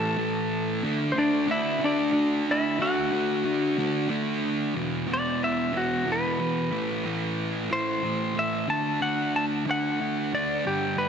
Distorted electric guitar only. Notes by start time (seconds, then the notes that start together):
Already playing: A2 E3 A3
0.17 A2 E3 A3
0.84 D3 A3 D4
1.14 D3 A3 D4
1.47 D3 A3 D4
1.80 D3 A3 D4
2.12 D3 A3 D4
2.79 D3 A3 D4
3.12 D3 A3 D4
3.44 D3 A3 D4
3.78 D3 A3 D4
4.09 D3 A3 D4
4.75 E2 B2 E3
5.08 E2 B2 E3
5.72 E2 B2 E3
6.06 E2 B2 E3
6.39 E2 B2 E3
6.71 A2 E3 A3
7.04 A2 E3 A3
7.70 A2 E3 A3
8.03 A2 E3 A3
8.35 A2 E3 A3
8.68 D3 A3 D4
9.01 D3 A3 D4
9.66 D3 A3 D4
10.00 D3 A3 D4
10.33 D3 A3 D4
10.66 G2 D3 G3
10.98 G2 D3 G3